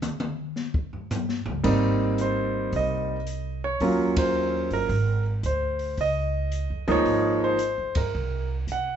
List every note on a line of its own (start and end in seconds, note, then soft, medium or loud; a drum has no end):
0.02 hi-hat pedal medium
0.02 mid tom medium
0.20 mid tom medium
0.56 snare soft
0.74 kick medium
0.93 floor tom soft
1.10 floor tom loud
1.10 hi-hat pedal medium
1.29 snare soft
1.46 1.64 C#2 medium
1.46 floor tom medium
1.64 2.69 G#1 medium
1.64 3.15 G3 medium
1.64 3.15 A#3 medium
1.64 3.16 C4 medium
1.64 3.15 D#4 medium
1.64 kick medium
1.64 crash medium
2.18 2.70 C5 medium
2.18 closed hi-hat soft
2.73 3.77 C2 medium
2.73 3.60 D#5 medium
2.73 kick soft
2.73 open hi-hat soft
3.27 closed hi-hat soft
3.64 4.14 C#5 medium
3.80 4.67 D#2 medium
3.80 4.89 F#3 medium
3.80 4.89 A#3 medium
3.80 4.89 C#4 medium
3.80 4.89 F4 medium
3.80 kick soft
3.80 open hi-hat soft
4.16 4.68 C5 medium
4.16 kick medium
4.16 ride medium
4.71 4.88 G1 medium
4.71 5.22 A#4 medium
4.71 open hi-hat soft
4.89 5.39 G#1 medium
4.89 kick soft
4.89 open hi-hat soft
5.43 5.93 D2 medium
5.43 5.95 C5 medium
5.43 closed hi-hat soft
5.79 open hi-hat soft
5.97 6.66 C#2 medium
5.97 6.85 D#5 medium
5.97 kick soft
5.97 open hi-hat soft
6.52 closed hi-hat medium
6.70 6.87 F2 medium
6.88 7.05 D2 medium
6.88 7.56 F3 medium
6.88 7.56 G#3 medium
6.88 7.56 A#3 medium
6.88 7.57 D#4 medium
6.88 7.40 C#5 medium
6.88 open hi-hat soft
7.06 7.74 G#1 medium
7.06 kick soft
7.06 open hi-hat soft
7.44 7.93 C5 medium
7.59 closed hi-hat medium
7.78 7.95 F2 medium
7.95 8.13 G2 medium
7.95 8.47 A#4 medium
7.95 kick medium
7.95 ride medium
8.15 8.65 C2 medium
8.67 8.96 C3 medium
8.67 closed hi-hat medium
8.72 8.96 F#5 medium